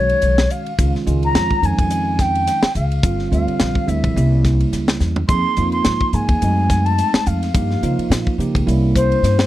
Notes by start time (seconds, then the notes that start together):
Already playing: B1 D#3 G#3 C#4 F#4 C#5
0.09 ride
0.22 B1, hi-hat pedal, ride
0.38 snare
0.50 F5, hi-hat pedal, ride
0.66 ride
0.78 C#2 D#3 G#3 C#4 F4, kick, hi-hat pedal, ride
0.95 snare
1.06 C#2 D#3 G#3 C#4 F4, hi-hat pedal, ride
1.23 A#5, ride
1.34 F2, snare, hi-hat pedal, ride
1.51 kick
1.62 F2 D#3 G#3 C#4 D#4 G#5, hi-hat pedal, ride
1.78 F2, kick, ride
1.90 hi-hat pedal, ride
2.19 G5, kick, snare, hi-hat pedal, ride
2.35 ride
2.47 snare, hi-hat pedal, ride
2.63 muted upright bass stroke, snare
2.75 C#2 F5, hi-hat pedal, ride
2.92 ride
3.03 G1 D3 G3 C4 F4, kick, hi-hat pedal, ride
3.19 snare
3.31 D2 D3 G3 C4 F4 F5, hi-hat pedal, ride
3.48 muted upright bass stroke, ride
3.60 A#1, snare, hi-hat pedal, ride
3.75 kick
3.86 D2 D3 G3 C4 E4 E5, hi-hat pedal, ride
4.04 A#1, kick, ride
4.16 C2 G3 A#3 C#4 E4, hi-hat pedal, ride
4.45 kick, snare, hi-hat pedal, ride
4.60 ride
4.73 C#2, snare, hi-hat pedal, ride
4.88 snare
5.00 E2, snare, hi-hat pedal
5.16 floor tom
5.27 F2 F3 A#3 D#4 G#4 C6, kick, hi-hat pedal, ride
5.57 F2 F3 A#3 D#4 F4, hi-hat pedal, ride
5.72 C6, ride
5.85 G#2, snare, hi-hat pedal, ride
6.01 kick
6.13 G#2 F3 A#3 D#4 G#4 G#5, hi-hat pedal, ride
6.29 D#2, kick, ride
6.42 F#2 G#3 A3 C4 D#4, hi-hat pedal, ride
6.70 kick, snare, hi-hat pedal, ride
6.85 A5, ride
6.98 hi-hat pedal, ride
7.14 muted upright bass stroke, snare
7.26 F2 F5, hi-hat pedal, ride
7.43 snare, ride
7.54 G2 F3 A#3 D#4 G4, kick, hi-hat pedal, ride
7.71 snare
7.82 C#3 F3 A#3 D#4 F4, hi-hat pedal, ride
7.98 muted upright bass stroke, ride
8.10 A#2, snare, hi-hat pedal, ride
8.27 kick
8.38 C#3 F3 A#3 D#4 G4, hi-hat pedal, ride
8.55 C#2, kick, ride
8.66 C2 G3 A#3 C#4 E4, hi-hat pedal, ride
8.96 C5, kick, hi-hat pedal, ride
9.12 ride
9.23 G2, snare, hi-hat pedal, ride
9.39 snare